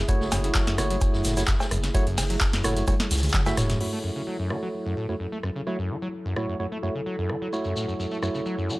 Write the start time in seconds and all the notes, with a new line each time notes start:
Already playing: A3 E4 G#4
0.08 F#2 A3 E4 F#4 C#5, kick, closed hi-hat, shekere, shaker
0.21 F#1 A3, snare, shekere
0.31 F#1 F#2, snare, open hi-hat, cowbell, shaker, shekere
0.44 C#3, closed hi-hat, shekere
0.55 F#3, kick, snare, clap, closed hi-hat, shekere, shaker
0.67 F#2, snare, closed hi-hat, shekere
0.78 F#1 E3 A3 E4 F#4 C#5, cross-stick, open hi-hat, shaker, shekere
0.90 F#3, closed hi-hat, shekere
1.01 kick, closed hi-hat, cowbell, shekere, shaker
1.14 F#2, snare, shekere
1.24 F#1 A2, snare, open hi-hat, shaker, shekere
1.37 F#2 A3 E4 F#4 C#5, snare, closed hi-hat, shaker, shekere
1.47 F#2, kick, snare, clap, closed hi-hat, shekere, shaker
1.60 A3, snare, cowbell, shaker, shekere
1.71 F#1 F#2, cross-stick, open hi-hat, shekere, shaker
1.83 C#3, snare, closed hi-hat, shekere
1.94 F#3 A3 E4 F#4 C#5, kick, closed hi-hat, shekere, shaker
2.06 F#1 F#2, closed hi-hat, shekere
2.17 F#1 E3, snare, open hi-hat, cowbell, shekere
2.30 F#3, closed hi-hat, shekere
2.41 kick, snare, clap, closed hi-hat, shekere, shaker
2.53 F#2, snare, closed hi-hat, shekere
2.64 F#1 A2 A3 E4 F#4 C#5, cross-stick, open hi-hat, shaker, shekere
2.76 F#2, closed hi-hat, shekere
2.87 F#2 A3 E4 F#4 C#5, kick, closed hi-hat, high tom, cowbell, shaker, shekere
3.00 A3, snare, closed hi-hat, high tom, shekere
3.10 C#2 E2, snare, open hi-hat, shaker, shekere
3.17 snare, shaker
3.23 snare, closed hi-hat, mid tom, shekere, shaker
3.28 snare, shaker
3.34 F#3, kick, snare, clap, closed hi-hat, mid tom, shekere
3.46 F#2 A3 E4 F#4 E5, snare, closed hi-hat, cowbell, shaker, shekere
3.57 E1 A2 A3 E4 F#4 C#5, cross-stick, snare, mid tom, open hi-hat, shaker, shekere
3.69 F#2, snare, closed hi-hat, mid tom, shaker, shekere
3.81 F#2 F#3 A3 E4 F#4 A4 C#5, crash
3.93 A3
4.04 F#2
4.16 C#3
4.27 F#3
4.39 F#2
4.50 E3 A3 E4 F#4 C#5, cross-stick
4.63 F#3
4.86 F#2
4.97 A2
5.09 F#2 A3 E4 F#4 C#5
5.20 F#2
5.32 A3
5.43 F#2, cross-stick
5.56 C#3
5.67 F#3 A3 E4 F#4 C#5
5.79 F#2
5.90 E3
6.02 F#3
6.25 F#2
6.36 A2 A3 E4 F#4 C#5, cross-stick
6.49 F#2
6.60 F#2 A3 E4 F#4 C#5
6.72 A3
6.83 F#2 A3 E4 F#4 C#5
6.95 C#3
7.06 F#3
7.18 F#2
7.29 E3, cross-stick
7.42 F#3
7.53 A3 E4 F#4 C#5, shekere
7.64 F#2, shekere
7.76 A2, shekere
7.88 F#2, shekere
7.99 F#2, shekere
8.11 A3, shekere
8.22 F#2 A3 E4 F#4 C#5, cross-stick, shekere
8.35 C#3, shekere
8.46 F#3, shekere
8.58 F#2, shekere
8.69 E3, shekere